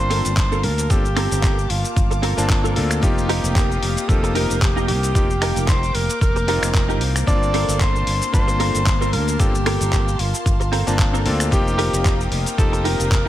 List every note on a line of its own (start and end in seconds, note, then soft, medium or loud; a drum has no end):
0.00 0.22 G1 loud
0.00 0.87 A#3 medium
0.00 7.24 A#3 medium
0.00 0.87 C4 medium
0.00 0.87 D4 medium
0.00 0.88 F4 medium
0.00 0.66 C5 loud
0.00 7.24 F5 medium
0.00 0.88 A5 medium
0.00 2.99 A5 medium
0.00 0.88 C6 medium
0.10 0.31 C4 loud
0.10 0.31 F4 medium
0.10 0.31 A4 loud
0.10 0.31 A#4 loud
0.10 open hi-hat loud
0.25 0.65 G1 medium
0.25 closed hi-hat medium
0.25 shaker medium
0.37 kick loud
0.37 clap loud
0.37 closed hi-hat medium
0.37 shaker medium
0.51 0.64 C4 medium
0.51 0.64 F4 medium
0.51 0.64 A4 medium
0.51 0.64 A#4 medium
0.51 shaker soft
0.63 0.87 D2 medium
0.63 0.92 A#4 loud
0.63 open hi-hat loud
0.78 muted clean electric guitar stroke soft
0.78 closed hi-hat medium
0.78 shaker medium
0.90 1.28 G1 medium
0.90 1.02 A#3 medium
0.90 1.02 C4 medium
0.90 1.02 D4 medium
0.90 1.03 F4 medium
0.90 1.71 G4 loud
0.90 1.03 A4 medium
0.90 3.00 D6 medium
0.90 kick loud
0.90 closed hi-hat medium
0.90 shaker medium
1.05 shaker soft
1.16 1.58 C4 loud
1.16 1.58 F4 medium
1.16 1.58 A4 loud
1.16 1.58 A#4 loud
1.16 finger snap medium
1.16 open hi-hat loud
1.31 1.67 G1 loud
1.31 closed hi-hat medium
1.31 shaker medium
1.43 kick loud
1.43 clap loud
1.43 closed hi-hat medium
1.43 shaker soft
1.59 shaker soft
1.70 1.82 G1 medium
1.70 2.76 F4 medium
1.70 open hi-hat loud
1.84 closed hi-hat medium
1.84 shaker medium
1.96 2.34 G1 loud
1.96 muted clean electric guitar stroke soft
1.96 kick loud
1.96 closed hi-hat medium
1.96 shaker medium
2.11 muted clean electric guitar stroke medium
2.11 closed hi-hat soft
2.11 shaker soft
2.22 2.43 C4 loud
2.22 2.44 F4 medium
2.22 2.44 A4 loud
2.22 2.44 A#4 loud
2.22 open hi-hat loud
2.37 2.78 G1 medium
2.37 2.73 A#3 medium
2.37 2.73 C4 medium
2.37 2.73 D4 medium
2.37 2.73 F4 medium
2.37 2.73 A5 loud
2.37 closed hi-hat medium
2.37 shaker medium
2.50 kick loud
2.50 clap loud
2.50 closed hi-hat medium
2.50 shaker medium
2.64 2.76 C4 medium
2.64 2.76 F4 medium
2.64 2.76 A4 medium
2.64 2.76 A#4 medium
2.64 shaker soft
2.76 2.99 D2 medium
2.76 3.00 A#3 medium
2.76 3.00 C4 medium
2.76 3.00 D4 medium
2.76 3.00 F4 medium
2.76 3.00 A4 medium
2.76 open hi-hat loud
2.90 finger snap medium
2.90 muted clean electric guitar stroke soft
2.90 closed hi-hat medium
2.90 shaker medium
3.01 3.40 F1 loud
3.01 4.05 A#3 medium
3.01 4.06 C4 medium
3.01 4.06 D#4 medium
3.01 4.06 F4 medium
3.01 4.10 G4 medium
3.01 4.06 G4 loud
3.01 7.24 G5 medium
3.01 5.13 D#6 medium
3.01 kick loud
3.01 closed hi-hat medium
3.01 shaker medium
3.18 shaker soft
3.29 3.70 D#4 loud
3.29 3.70 F4 medium
3.29 3.70 G4 loud
3.29 3.70 A#4 loud
3.29 open hi-hat loud
3.44 3.79 F1 loud
3.44 closed hi-hat medium
3.44 shaker medium
3.56 kick loud
3.56 clap loud
3.56 closed hi-hat medium
3.56 shaker soft
3.72 shaker soft
3.83 3.95 F1 medium
3.83 open hi-hat loud
3.97 closed hi-hat medium
3.97 shaker medium
4.08 4.47 F1 loud
4.08 5.12 A#3 medium
4.08 5.12 C4 medium
4.08 5.12 D#4 medium
4.08 5.13 F4 medium
4.08 5.13 G4 medium
4.08 4.36 A4 loud
4.08 muted clean electric guitar stroke soft
4.08 kick loud
4.08 closed hi-hat medium
4.08 shaker medium
4.23 muted clean electric guitar stroke medium
4.23 closed hi-hat soft
4.23 shaker soft
4.35 4.56 D#4 loud
4.35 4.56 F4 medium
4.35 4.56 G4 loud
4.35 4.63 A#4 loud
4.35 4.56 A#4 loud
4.35 open hi-hat loud
4.50 4.90 F1 medium
4.50 closed hi-hat soft
4.50 shaker medium
4.61 4.87 G4 medium
4.61 kick loud
4.61 clap loud
4.61 closed hi-hat medium
4.61 shaker medium
4.76 4.88 D#4 loud
4.76 4.89 F4 medium
4.76 4.89 G4 medium
4.76 4.89 A#4 medium
4.76 shaker soft
4.88 5.12 C2 medium
4.88 5.70 G4 loud
4.88 open hi-hat loud
5.03 muted clean electric guitar stroke soft
5.03 closed hi-hat medium
5.03 shaker medium
5.15 5.53 F1 medium
5.15 5.27 A#3 medium
5.15 5.27 C4 medium
5.15 5.27 D#4 medium
5.15 5.27 F4 medium
5.15 5.28 G4 medium
5.15 7.26 D6 medium
5.15 kick loud
5.15 closed hi-hat medium
5.15 shaker medium
5.30 shaker soft
5.42 5.83 D#4 loud
5.42 5.83 F4 medium
5.42 5.83 G4 loud
5.42 5.83 A#4 loud
5.42 finger snap medium
5.42 open hi-hat loud
5.56 5.92 F1 loud
5.56 closed hi-hat medium
5.56 shaker medium
5.68 5.96 C5 loud
5.68 kick loud
5.68 clap loud
5.68 closed hi-hat medium
5.68 shaker medium
5.83 closed hi-hat soft
5.83 shaker soft
5.94 6.07 F1 medium
5.94 6.21 A#4 loud
5.94 open hi-hat loud
6.09 closed hi-hat soft
6.09 shaker medium
6.21 6.59 F1 loud
6.21 6.97 A#4 loud
6.21 muted clean electric guitar stroke soft
6.21 kick loud
6.21 closed hi-hat medium
6.21 shaker medium
6.36 muted clean electric guitar stroke medium
6.36 closed hi-hat soft
6.36 shaker soft
6.47 7.24 A#3 medium
6.47 7.24 C4 medium
6.47 7.25 D#4 medium
6.47 6.69 D#4 loud
6.47 6.69 F4 loud
6.47 7.25 F4 medium
6.47 6.69 G4 loud
6.47 6.69 A#4 loud
6.47 7.25 A#4 medium
6.47 open hi-hat loud
6.62 7.01 F1 medium
6.62 finger snap medium
6.62 open hi-hat medium
6.62 shaker medium
6.74 kick loud
6.74 clap loud
6.74 closed hi-hat medium
6.74 shaker medium
6.89 7.01 D#4 medium
6.89 7.01 F4 medium
6.89 7.01 G4 medium
6.89 7.01 A#4 medium
6.89 shaker soft
7.01 7.24 C2 medium
7.01 open hi-hat loud
7.15 finger snap medium
7.15 muted clean electric guitar stroke soft
7.15 closed hi-hat soft
7.15 shaker medium
7.27 7.65 G1 loud
7.27 8.30 A#3 loud
7.27 11.48 A#3 medium
7.27 8.31 C4 medium
7.27 8.31 D4 medium
7.27 8.31 F4 medium
7.27 7.82 D5 loud
7.27 13.28 F5 medium
7.27 11.48 A5 medium
7.27 8.31 A5 loud
7.27 11.48 C6 medium
7.27 kick loud
7.27 closed hi-hat medium
7.27 shaker medium
7.43 shaker soft
7.54 7.95 C4 loud
7.54 7.95 F4 medium
7.54 7.95 A4 loud
7.54 7.95 A#4 loud
7.54 open hi-hat loud
7.68 8.04 G1 loud
7.68 closed hi-hat medium
7.68 shaker medium
7.80 8.33 C5 loud
7.80 kick loud
7.80 clap loud
7.80 closed hi-hat medium
7.80 shaker medium
7.96 shaker soft
8.07 8.19 G1 medium
8.07 open hi-hat loud
8.22 closed hi-hat soft
8.22 shaker medium
8.32 8.71 G1 loud
8.32 9.36 A#3 medium
8.32 9.37 C4 medium
8.32 9.37 D4 medium
8.32 9.37 F4 medium
8.32 9.15 C5 loud
8.32 9.37 A5 medium
8.32 muted clean electric guitar stroke soft
8.32 kick loud
8.32 closed hi-hat medium
8.32 shaker medium
8.48 muted clean electric guitar stroke medium
8.48 closed hi-hat soft
8.48 shaker soft
8.59 8.80 C4 medium
8.59 8.81 F4 medium
8.59 8.81 A4 loud
8.59 8.81 A#4 loud
8.59 open hi-hat loud
8.75 9.14 G1 medium
8.75 closed hi-hat soft
8.75 shaker medium
8.86 kick loud
8.86 clap loud
8.86 closed hi-hat medium
8.86 shaker medium
9.01 9.13 C4 medium
9.01 9.13 F4 medium
9.01 9.13 A4 medium
9.01 9.13 A#4 medium
9.01 shaker soft
9.13 9.36 D2 medium
9.13 9.41 A#4 loud
9.13 open hi-hat loud
9.27 muted clean electric guitar stroke soft
9.27 closed hi-hat soft
9.27 shaker medium
9.39 9.77 G1 loud
9.39 9.52 A#3 medium
9.39 9.52 C4 medium
9.39 9.52 D4 medium
9.39 9.52 F4 medium
9.39 10.21 G4 loud
9.39 9.52 A4 medium
9.39 kick loud
9.39 closed hi-hat medium
9.39 shaker medium
9.55 shaker soft
9.66 10.07 C4 loud
9.66 10.07 F4 loud
9.66 10.08 A4 loud
9.66 10.08 A#4 loud
9.66 finger snap medium
9.66 open hi-hat loud
9.81 10.17 G1 loud
9.81 closed hi-hat medium
9.81 shaker medium
9.93 kick loud
9.93 clap loud
9.93 closed hi-hat medium
9.93 shaker medium
10.08 shaker soft
10.19 10.32 G1 medium
10.19 11.26 F4 medium
10.19 open hi-hat loud
10.34 closed hi-hat medium
10.34 shaker medium
10.46 10.84 G1 loud
10.46 muted clean electric guitar stroke soft
10.46 kick loud
10.46 closed hi-hat medium
10.46 shaker medium
10.60 muted clean electric guitar stroke medium
10.60 closed hi-hat soft
10.60 shaker soft
10.72 10.93 C4 loud
10.72 10.93 F4 medium
10.72 10.93 A4 medium
10.72 10.93 A#4 loud
10.72 open hi-hat loud
10.87 11.27 G1 medium
10.87 11.23 A#3 medium
10.87 11.23 C4 medium
10.87 11.23 D4 medium
10.87 11.23 F4 medium
10.87 11.23 A5 loud
10.87 closed hi-hat medium
10.87 shaker medium
10.99 kick loud
10.99 clap loud
10.99 closed hi-hat medium
10.99 shaker medium
11.13 11.25 C4 medium
11.13 11.26 F4 medium
11.13 11.26 A4 medium
11.13 11.26 A#4 medium
11.13 shaker soft
11.25 11.49 D2 medium
11.25 11.49 A#3 medium
11.25 11.49 C4 medium
11.25 11.49 D4 medium
11.25 11.50 F4 medium
11.25 11.50 A4 medium
11.25 open hi-hat loud
11.39 finger snap medium
11.39 muted clean electric guitar stroke soft
11.39 closed hi-hat medium
11.39 shaker medium
11.51 11.90 F1 loud
11.51 12.55 A#3 loud
11.51 12.55 C4 medium
11.51 12.56 D#4 medium
11.51 12.56 F4 medium
11.51 12.28 G4 loud
11.51 12.56 G4 loud
11.51 13.28 A#4 medium
11.51 13.28 G5 medium
11.51 13.28 D#6 medium
11.51 kick loud
11.51 closed hi-hat medium
11.51 shaker medium
11.68 shaker soft
11.78 12.19 D#4 loud
11.78 12.20 F4 loud
11.78 12.20 G4 loud
11.78 12.20 A#4 loud
11.78 open hi-hat loud
11.93 12.29 F1 loud
11.93 closed hi-hat medium
11.93 shaker medium
12.05 kick loud
12.05 clap loud
12.05 closed hi-hat medium
12.05 shaker medium
12.21 shaker soft
12.31 12.44 F1 medium
12.31 open hi-hat loud
12.46 closed hi-hat medium
12.46 shaker medium
12.58 12.96 F1 loud
12.58 13.28 A#3 medium
12.58 13.28 C4 medium
12.58 13.28 D#4 medium
12.58 13.28 F4 medium
12.58 13.28 G4 medium
12.58 12.86 A4 loud
12.58 muted clean electric guitar stroke soft
12.58 kick loud
12.58 closed hi-hat medium
12.58 shaker medium
12.72 muted clean electric guitar stroke medium
12.72 closed hi-hat soft
12.72 shaker soft
12.84 13.05 D#4 loud
12.84 13.05 F4 medium
12.84 13.06 G4 loud
12.84 13.28 A#4 loud
12.84 13.06 A#4 loud
12.84 open hi-hat loud
12.99 13.28 F1 medium
12.99 closed hi-hat medium
12.99 shaker medium
13.11 kick loud
13.11 clap loud
13.11 closed hi-hat medium
13.11 shaker medium